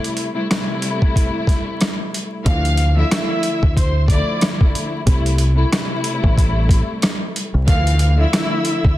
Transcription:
Already playing: string section C3 G3 A3 E4
0.04 closed hi-hat
0.17 closed hi-hat
0.32 string section C3 G3 A3 E4
0.48 string section C3 G3 A3 E4, cross-stick, snare, closed hi-hat
0.82 closed hi-hat
1.02 kick
1.16 kick, closed hi-hat
1.47 kick, snare, closed hi-hat
1.81 cross-stick, snare, closed hi-hat
2.14 closed hi-hat
2.44 fingered electric bass D2, string section D3 E3 F3 A3, violin section F5 F6, kick, closed hi-hat
2.65 closed hi-hat
2.77 closed hi-hat
2.94 string section D3 F3 A3 E4, violin section E5
2.98 violin section E6
3.09 string section D3 F3 A3 E4, cross-stick, snare, closed hi-hat
3.43 closed hi-hat
3.63 fingered electric bass D2, kick
3.77 violin section C5 C6, kick, closed hi-hat
4.08 string section D3 F3 A3 E4, violin section D5 D6, kick, closed hi-hat
4.41 cross-stick, snare, closed hi-hat
4.61 kick
4.75 closed hi-hat
5.04 fingered electric bass C2, string section C3 G3 A3 E4, kick, closed hi-hat
5.26 closed hi-hat
5.38 closed hi-hat
5.54 string section C3 G3 A3 E4
5.70 string section C3 G3 A3 E4, cross-stick, snare, closed hi-hat
6.04 closed hi-hat
6.24 fingered electric bass A1, kick
6.38 kick, closed hi-hat
6.69 kick, closed hi-hat
7.02 cross-stick, snare, closed hi-hat
7.36 closed hi-hat
7.54 fingered electric bass C2
7.66 fingered electric bass D2, string section D3 E3 F3 A3, violin section F5 F6, kick, closed hi-hat
7.87 closed hi-hat
7.99 closed hi-hat
8.16 string section D3 F3 A3 E4
8.20 violin section E5 E6
8.31 string section D3 F3 A3 E4, cross-stick, snare, closed hi-hat
8.65 closed hi-hat
8.85 fingered electric bass D2, kick

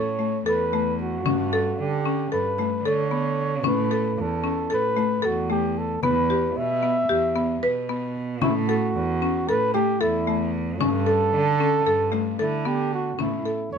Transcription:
Already playing: cello A2, marimba A4, flugelhorn C#5
0.19 marimba A3
0.46 cello E2, marimba A4, flugelhorn B4
0.73 marimba A3
1.00 flugelhorn F#4, frame drum
1.25 cello G2, marimba C#4, frame drum
1.53 marimba A4
1.78 cello D3, flugelhorn G4
2.06 marimba C#4
2.32 cello G2, marimba A4, flugelhorn B4, frame drum
2.58 marimba A3, frame drum
2.84 cello D3, marimba A4, flugelhorn C#5, frame drum
3.11 marimba B3, frame drum
3.63 cello A2, marimba C#4, flugelhorn B4, frame drum
3.91 marimba A4
4.17 cello E2, flugelhorn A4
4.44 marimba C#4
4.70 cello A2, marimba A4, flugelhorn B4
4.97 marimba A3, frame drum
5.22 cello E2, flugelhorn F#4, marimba A4
5.50 marimba A3, flugelhorn G4
5.77 flugelhorn A4, frame drum
6.03 cello E2, marimba B3, flugelhorn B4, frame drum
6.30 marimba G4
6.56 cello B2, flugelhorn E5
6.83 marimba B3
7.09 cello E2, marimba G4
7.36 marimba B3, frame drum
7.63 cello B2, marimba B4
7.90 marimba B3
8.15 frame drum
8.42 cello A2, marimba C#4, flugelhorn E4, frame drum
8.68 flugelhorn F#4, marimba A4
8.95 cello E2
9.22 marimba C#4
9.48 cello A2, marimba A4, flugelhorn B4
9.74 marimba A3, flugelhorn G4, frame drum
10.01 cello E2, flugelhorn E4, marimba A4
10.28 marimba A3
10.53 frame drum
10.80 cello G2, marimba C#4, flugelhorn A4, frame drum
11.06 marimba A4
11.33 cello D3
11.60 marimba C#4, frame drum
11.86 cello G2, marimba A4
12.12 marimba A3, frame drum
12.39 cello D3, flugelhorn E4, marimba A4
12.65 marimba B3, flugelhorn G4
12.93 flugelhorn F#4, frame drum
13.18 cello A2, marimba C#4, flugelhorn E4, frame drum
13.45 marimba A4
13.72 cello E2, flugelhorn C#5

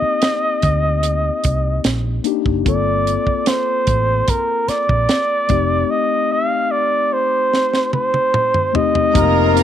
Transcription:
Already playing: tine electric piano A#3 C4 D#4 G4, flugelhorn D#5
0.02 muted fingered electric bass stroke
0.22 snare, closed hi-hat
0.62 fingered electric bass D2, kick, closed hi-hat
1.03 closed hi-hat
1.44 fingered electric bass C2, kick, closed hi-hat
1.84 fingered electric bass A#1, snare, closed hi-hat
2.24 tine electric piano A#3 D4 D#4 G4, closed hi-hat
2.45 fingered electric bass F#1, kick
2.65 fingered electric bass G1, tine electric piano A#3 C4 F4 A4, flugelhorn D5, kick, closed hi-hat
3.07 closed hi-hat
3.27 muted fingered electric bass stroke, kick
3.46 flugelhorn C5, snare, closed hi-hat
3.87 fingered electric bass A1, kick, closed hi-hat
4.28 flugelhorn A#4, kick, closed hi-hat
4.68 flugelhorn D5, muted fingered electric bass stroke, snare, closed hi-hat
4.89 fingered electric bass A#1, kick
5.09 snare, closed hi-hat
5.48 fingered electric bass F1, tine electric piano A3 C4 D#4 G4, kick, closed hi-hat
5.90 flugelhorn D#5
6.32 flugelhorn F5
6.71 flugelhorn D5
7.13 flugelhorn C5
7.54 snare
7.74 snare
7.93 flugelhorn C5, high tom
8.14 high tom
8.34 mid tom
8.54 mid tom
8.73 tine electric piano A3 C4 D#4 G4, flugelhorn D#5, floor tom
8.95 floor tom
9.13 fingered electric bass F1, horn section C3 A#3 F4, tine electric piano A#3 C4 D#4 G4, violin section A#4 A#5, kick, closed hi-hat
9.54 tine electric piano A#3 C4 D#4 G4, closed hi-hat

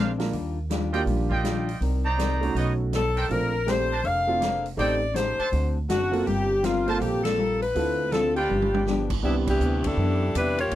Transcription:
Already playing: upright bass A#1, steel-string acoustic guitar A#2 G#3 C4 D4, trumpet section D4 A#4 C5 F5
0.18 grand piano A#3 D4 F4 A#4, snare, open hi-hat
0.31 upright bass D#2, steel-string acoustic guitar D#3 G3 D4 F4, open hi-hat
0.70 steel-string acoustic guitar D#3 G3 D4 F4, snare, closed hi-hat
0.92 grand piano A#3 D4 F4 G4, trumpet section F4 D5 D#5 G5, open hi-hat
1.06 upright bass A#1, steel-string acoustic guitar D#3 G3 D4 F4, open hi-hat
1.29 trumpet section F4 D5 D#5 G5, kick
1.43 steel-string acoustic guitar D#3 G3 D4 F4, snare, closed hi-hat
1.69 open hi-hat
1.81 upright bass C2, steel-string acoustic guitar C4 D#4 A#4 D5, open hi-hat
2.04 trumpet section D#4 C5 D5 A#5
2.17 steel-string acoustic guitar C4 D#4 A#4 D5, snare, closed hi-hat
2.41 grand piano A3 C#4 D#4 F#4, open hi-hat
2.55 upright bass B1, steel-string acoustic guitar B3 D#4 A4 C#5, trumpet section D#4 B4 C#5 D#5, open hi-hat
2.92 steel-string acoustic guitar B3 D#4 A4 C#5, saxophone section A4, snare, closed hi-hat
3.16 trumpet section D4 A#4 C5 G5, open hi-hat
3.29 upright bass A#1, grand piano A3 C4 D4 F4, steel-string acoustic guitar A#3 D4 A4 C5, saxophone section A#4, open hi-hat
3.67 grand piano A3 C4 D4 G4, steel-string acoustic guitar A#3 D4 A4 C5, saxophone section C5, snare, closed hi-hat
3.91 trumpet section D4 A#4 C5 A5
4.03 upright bass F1, steel-string acoustic guitar A#3 D4 A4 C5, saxophone section F5, open hi-hat
4.27 grand piano A3 C4 D4 F4
4.40 steel-string acoustic guitar A#3 D4 A4 C5, snare, closed hi-hat
4.66 open hi-hat
4.76 upright bass A1, steel-string acoustic guitar A3 D#4 G4 C5, grand piano A3 C4 D#4 G4, trumpet section D#4 A4 C5 G5, saxophone section D5, open hi-hat
5.14 steel-string acoustic guitar A3 D#4 G4 C5, saxophone section C5, snare, closed hi-hat
5.38 trumpet section D4 A4 C5 A5, muted upright bass stroke, open hi-hat
5.50 upright bass D2, steel-string acoustic guitar D3 A3 C4 F#4, open hi-hat
5.88 upright bass F#1, steel-string acoustic guitar D3 A3 C4 F#4, saxophone section F#4, snare, closed hi-hat
6.12 grand piano A#3 C4 F4 A4, open hi-hat
6.26 upright bass G1, steel-string acoustic guitar G3 C4 F4 A#4, saxophone section G4, open hi-hat
6.62 steel-string acoustic guitar G3 C4 F4 A#4, saxophone section F4, snare, closed hi-hat
6.86 grand piano A#3 C4 F4 A4, trumpet section F4 A#4 C5 A5, open hi-hat
6.99 upright bass A#1, steel-string acoustic guitar G3 C4 F4 A#4, saxophone section G4, open hi-hat
7.24 saxophone section A4, snare, ride
7.38 steel-string acoustic guitar G3 C4 F4 A#4
7.62 saxophone section B4, open hi-hat
7.75 upright bass D2, steel-string acoustic guitar D3 A3 C4 F4, grand piano C4 E4 F4 A4, open hi-hat
8.12 steel-string acoustic guitar D3 A3 C4 F4, saxophone section A4, snare, closed hi-hat
8.36 trumpet section F4 B4 D5 G5, saxophone section G4, open hi-hat
8.49 upright bass G1, steel-string acoustic guitar G2 F3 B3 D4, high tom
8.62 high tom
8.74 high tom
8.86 steel-string acoustic guitar G2 F3 B3 D4, snare
9.10 kick, crash
9.22 upright bass C2, steel-string acoustic guitar C3 E3 B3 D4, grand piano C3 B3 D4 E4 G4, saxophone section G3 B3 D4 E4
9.47 saxophone section E3 B3 D4 G4, kick, crash
9.60 upright bass D2, steel-string acoustic guitar C3 E3 B3 D4, hi-hat pedal
9.84 saxophone section D4 E4 G4 A4, kick, ride
9.97 upright bass F#2, steel-string acoustic guitar C3 E3 B3 D4
10.35 upright bass E2, steel-string acoustic guitar C3 E3 B3 D4, saxophone section G3 D4 E4 B4, hi-hat pedal, ride
10.59 saxophone section A#3 F4 G4 C#5, ride
10.71 upright bass D#2, steel-string acoustic guitar D#3, ride

